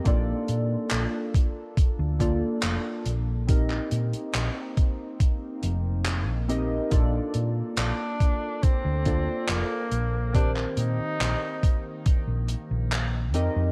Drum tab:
HH |x-x-x-x-x-x-x-x-|x-xxx-x-x-x-x-x-|x-x-x-x-x-x-x-x-|x-x-x-x-x-x-x-x-|
CP |----x-------x---|-x--x-------x---|----x-------x---|-x--x-------x---|
BD |o-----o-o-o-----|o-----o-o-------|o-----o-o-o-----|o-----o-o-------|